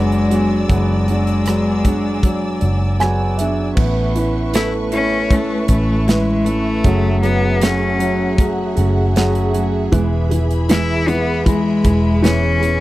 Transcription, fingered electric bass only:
0, 0, Header, 1, 2, 480
1, 0, Start_track
1, 0, Tempo, 769231
1, 434, Time_signature, 4, 2, 24, 8
1, 7989, End_track
2, 0, Start_track
2, 0, Title_t, "Fingered electric bass"
2, 0, Program_c, 0, 33
2, 0, Note_on_c, 0, 30, 73
2, 408, Note_off_c, 0, 30, 0
2, 433, Note_on_c, 0, 30, 72
2, 1609, Note_off_c, 0, 30, 0
2, 1636, Note_on_c, 0, 30, 69
2, 2330, Note_off_c, 0, 30, 0
2, 2351, Note_on_c, 0, 33, 79
2, 3528, Note_off_c, 0, 33, 0
2, 3550, Note_on_c, 0, 33, 81
2, 4247, Note_off_c, 0, 33, 0
2, 4272, Note_on_c, 0, 30, 91
2, 5448, Note_off_c, 0, 30, 0
2, 5476, Note_on_c, 0, 30, 73
2, 6170, Note_off_c, 0, 30, 0
2, 6194, Note_on_c, 0, 28, 105
2, 7369, Note_off_c, 0, 28, 0
2, 7391, Note_on_c, 0, 28, 95
2, 7989, Note_off_c, 0, 28, 0
2, 7989, End_track
0, 0, End_of_file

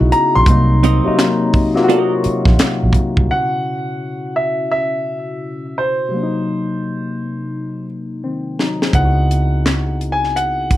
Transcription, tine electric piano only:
0, 0, Header, 1, 2, 480
1, 0, Start_track
1, 0, Tempo, 705882
1, 318, Time_signature, 4, 2, 24, 8
1, 7326, End_track
2, 0, Start_track
2, 0, Title_t, "Tine electric piano"
2, 0, Program_c, 0, 4
2, 0, Control_c, 0, 64, 127
2, 0, Note_on_c, 0, 49, 74
2, 0, Note_on_c, 0, 59, 72
2, 0, Note_on_c, 0, 63, 69
2, 0, Note_on_c, 0, 64, 71
2, 0, Note_on_c, 0, 66, 78
2, 145, Note_off_c, 0, 49, 0
2, 148, Note_off_c, 0, 59, 0
2, 152, Note_off_c, 0, 63, 0
2, 155, Note_off_c, 0, 64, 0
2, 157, Note_off_c, 0, 66, 0
2, 310, Note_on_c, 0, 48, 63
2, 317, Note_on_c, 0, 54, 63
2, 327, Control_c, 0, 64, 0
2, 327, Note_on_c, 0, 58, 62
2, 336, Note_on_c, 0, 63, 69
2, 440, Control_c, 0, 64, 127
2, 676, Note_off_c, 0, 48, 0
2, 680, Note_off_c, 0, 54, 0
2, 685, Note_off_c, 0, 58, 0
2, 689, Note_off_c, 0, 63, 0
2, 705, Note_on_c, 0, 48, 73
2, 713, Note_on_c, 0, 54, 74
2, 722, Note_on_c, 0, 58, 63
2, 730, Note_on_c, 0, 63, 80
2, 1147, Note_off_c, 0, 48, 0
2, 1150, Note_off_c, 0, 54, 0
2, 1155, Note_off_c, 0, 58, 0
2, 1159, Note_off_c, 0, 63, 0
2, 1183, Note_on_c, 0, 48, 78
2, 1192, Note_on_c, 0, 54, 80
2, 1201, Note_on_c, 0, 58, 86
2, 1208, Note_on_c, 0, 65, 79
2, 1231, Note_off_c, 0, 65, 0
2, 1251, Note_on_c, 0, 66, 96
2, 2065, Note_off_c, 0, 48, 0
2, 2069, Note_off_c, 0, 54, 0
2, 2073, Note_off_c, 0, 58, 0
2, 2099, Note_off_c, 0, 66, 0
2, 2218, Note_on_c, 0, 49, 45
2, 2230, Note_on_c, 0, 47, 47
2, 2244, Note_on_c, 0, 61, 47
2, 2246, Control_c, 0, 64, 0
2, 2257, Note_on_c, 0, 64, 43
2, 2269, Note_on_c, 0, 66, 56
2, 2351, Control_c, 0, 64, 127
2, 4121, Note_off_c, 0, 49, 0
2, 4127, Note_off_c, 0, 47, 0
2, 4134, Note_off_c, 0, 61, 0
2, 4137, Note_on_c, 0, 48, 48
2, 4140, Note_off_c, 0, 64, 0
2, 4146, Note_off_c, 0, 66, 0
2, 4155, Note_on_c, 0, 54, 49
2, 4167, Control_c, 0, 64, 0
2, 4175, Note_on_c, 0, 58, 46
2, 4191, Note_on_c, 0, 62, 42
2, 4231, Note_off_c, 0, 62, 0
2, 4235, Note_on_c, 0, 63, 53
2, 4294, Control_c, 0, 64, 127
2, 5569, Note_off_c, 0, 54, 0
2, 5579, Note_off_c, 0, 58, 0
2, 5602, Note_on_c, 0, 60, 51
2, 5608, Note_on_c, 0, 51, 44
2, 5609, Note_off_c, 0, 63, 0
2, 5828, Note_off_c, 0, 60, 0
2, 5831, Note_off_c, 0, 51, 0
2, 5844, Note_on_c, 0, 63, 59
2, 5848, Note_on_c, 0, 54, 45
2, 5987, Note_off_c, 0, 63, 0
2, 5988, Note_off_c, 0, 54, 0
2, 5999, Note_on_c, 0, 68, 52
2, 6003, Note_on_c, 0, 60, 40
2, 6040, Note_off_c, 0, 48, 0
2, 6060, Note_on_c, 0, 49, 46
2, 6073, Note_on_c, 0, 59, 49
2, 6086, Note_on_c, 0, 63, 47
2, 6087, Control_c, 0, 64, 0
2, 6099, Note_on_c, 0, 64, 46
2, 6111, Note_on_c, 0, 65, 43
2, 6151, Note_off_c, 0, 65, 0
2, 6156, Note_on_c, 0, 66, 58
2, 6219, Control_c, 0, 64, 127
2, 6223, Note_off_c, 0, 68, 0
2, 6225, Note_off_c, 0, 60, 0
2, 7326, Note_off_c, 0, 49, 0
2, 7326, Note_off_c, 0, 59, 0
2, 7326, Note_off_c, 0, 63, 0
2, 7326, Note_off_c, 0, 64, 0
2, 7326, Note_off_c, 0, 66, 0
2, 7326, End_track
0, 0, End_of_file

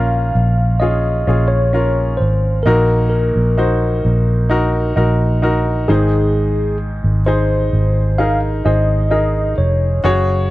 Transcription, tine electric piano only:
0, 0, Header, 1, 2, 480
1, 0, Start_track
1, 0, Tempo, 923077
1, 1383, Time_signature, 4, 2, 24, 8
1, 5463, End_track
2, 0, Start_track
2, 0, Title_t, "Tine electric piano"
2, 0, Program_c, 0, 4
2, 0, Note_on_c, 0, 77, 76
2, 414, Note_on_c, 0, 75, 70
2, 431, Note_off_c, 0, 77, 0
2, 758, Note_off_c, 0, 75, 0
2, 769, Note_on_c, 0, 73, 74
2, 1129, Note_on_c, 0, 72, 65
2, 1147, Note_off_c, 0, 73, 0
2, 1359, Note_off_c, 0, 72, 0
2, 1367, Note_on_c, 0, 70, 62
2, 1604, Note_off_c, 0, 70, 0
2, 1610, Note_on_c, 0, 70, 62
2, 2556, Note_off_c, 0, 70, 0
2, 3058, Note_on_c, 0, 68, 85
2, 3520, Note_off_c, 0, 68, 0
2, 3777, Note_on_c, 0, 72, 76
2, 4256, Note_on_c, 0, 77, 86
2, 4274, Note_off_c, 0, 72, 0
2, 4365, Note_off_c, 0, 77, 0
2, 4502, Note_on_c, 0, 75, 76
2, 4733, Note_off_c, 0, 75, 0
2, 4739, Note_on_c, 0, 75, 72
2, 4964, Note_off_c, 0, 75, 0
2, 4981, Note_on_c, 0, 73, 63
2, 5463, Note_off_c, 0, 73, 0
2, 5463, End_track
0, 0, End_of_file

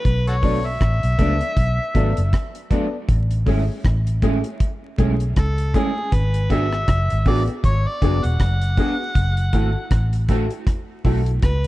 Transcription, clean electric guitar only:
0, 0, Header, 1, 2, 480
1, 0, Start_track
1, 0, Tempo, 758534
1, 30, Time_signature, 4, 2, 24, 8
1, 7385, End_track
2, 0, Start_track
2, 0, Title_t, "Clean electric guitar"
2, 0, Program_c, 0, 27
2, 271, Note_on_c, 0, 54, 81
2, 276, Note_on_c, 0, 57, 78
2, 279, Note_on_c, 0, 62, 84
2, 363, Note_off_c, 0, 54, 0
2, 365, Note_off_c, 0, 57, 0
2, 367, Note_off_c, 0, 62, 0
2, 750, Note_on_c, 0, 54, 92
2, 755, Note_on_c, 0, 57, 101
2, 760, Note_on_c, 0, 62, 96
2, 843, Note_off_c, 0, 54, 0
2, 845, Note_off_c, 0, 57, 0
2, 848, Note_off_c, 0, 62, 0
2, 1228, Note_on_c, 0, 54, 85
2, 1235, Note_on_c, 0, 57, 90
2, 1238, Note_on_c, 0, 62, 79
2, 1323, Note_off_c, 0, 54, 0
2, 1326, Note_off_c, 0, 57, 0
2, 1327, Note_off_c, 0, 62, 0
2, 1711, Note_on_c, 0, 54, 85
2, 1715, Note_on_c, 0, 57, 93
2, 1719, Note_on_c, 0, 62, 100
2, 1804, Note_off_c, 0, 54, 0
2, 1806, Note_off_c, 0, 57, 0
2, 1808, Note_off_c, 0, 62, 0
2, 2189, Note_on_c, 0, 56, 82
2, 2196, Note_on_c, 0, 61, 99
2, 2199, Note_on_c, 0, 64, 99
2, 2284, Note_off_c, 0, 56, 0
2, 2287, Note_off_c, 0, 61, 0
2, 2289, Note_off_c, 0, 64, 0
2, 2673, Note_on_c, 0, 56, 87
2, 2679, Note_on_c, 0, 61, 92
2, 2683, Note_on_c, 0, 64, 102
2, 2766, Note_off_c, 0, 56, 0
2, 2769, Note_off_c, 0, 61, 0
2, 2771, Note_off_c, 0, 64, 0
2, 3151, Note_on_c, 0, 56, 91
2, 3156, Note_on_c, 0, 61, 94
2, 3160, Note_on_c, 0, 64, 90
2, 3245, Note_off_c, 0, 56, 0
2, 3247, Note_off_c, 0, 61, 0
2, 3249, Note_off_c, 0, 64, 0
2, 3633, Note_on_c, 0, 56, 85
2, 3638, Note_on_c, 0, 61, 92
2, 3644, Note_on_c, 0, 64, 97
2, 3726, Note_off_c, 0, 56, 0
2, 3728, Note_off_c, 0, 61, 0
2, 3731, Note_off_c, 0, 64, 0
2, 4113, Note_on_c, 0, 59, 92
2, 4119, Note_on_c, 0, 62, 97
2, 4121, Note_on_c, 0, 66, 106
2, 4206, Note_off_c, 0, 59, 0
2, 4208, Note_off_c, 0, 62, 0
2, 4210, Note_off_c, 0, 66, 0
2, 4592, Note_on_c, 0, 59, 85
2, 4597, Note_on_c, 0, 62, 89
2, 4601, Note_on_c, 0, 66, 99
2, 4685, Note_off_c, 0, 59, 0
2, 4688, Note_off_c, 0, 62, 0
2, 4690, Note_off_c, 0, 66, 0
2, 5073, Note_on_c, 0, 59, 76
2, 5078, Note_on_c, 0, 62, 81
2, 5083, Note_on_c, 0, 66, 93
2, 5166, Note_off_c, 0, 59, 0
2, 5168, Note_off_c, 0, 62, 0
2, 5170, Note_off_c, 0, 66, 0
2, 5553, Note_on_c, 0, 59, 90
2, 5557, Note_on_c, 0, 62, 90
2, 5562, Note_on_c, 0, 66, 97
2, 5645, Note_off_c, 0, 59, 0
2, 5647, Note_off_c, 0, 62, 0
2, 5650, Note_off_c, 0, 66, 0
2, 6032, Note_on_c, 0, 57, 85
2, 6037, Note_on_c, 0, 64, 86
2, 6041, Note_on_c, 0, 66, 85
2, 6124, Note_off_c, 0, 57, 0
2, 6127, Note_off_c, 0, 64, 0
2, 6129, Note_off_c, 0, 66, 0
2, 6512, Note_on_c, 0, 57, 81
2, 6517, Note_on_c, 0, 64, 94
2, 6523, Note_on_c, 0, 66, 99
2, 6604, Note_off_c, 0, 57, 0
2, 6606, Note_off_c, 0, 64, 0
2, 6610, Note_off_c, 0, 66, 0
2, 6989, Note_on_c, 0, 57, 76
2, 6996, Note_on_c, 0, 64, 77
2, 7000, Note_on_c, 0, 66, 84
2, 7082, Note_off_c, 0, 57, 0
2, 7086, Note_off_c, 0, 64, 0
2, 7088, Note_off_c, 0, 66, 0
2, 7385, End_track
0, 0, End_of_file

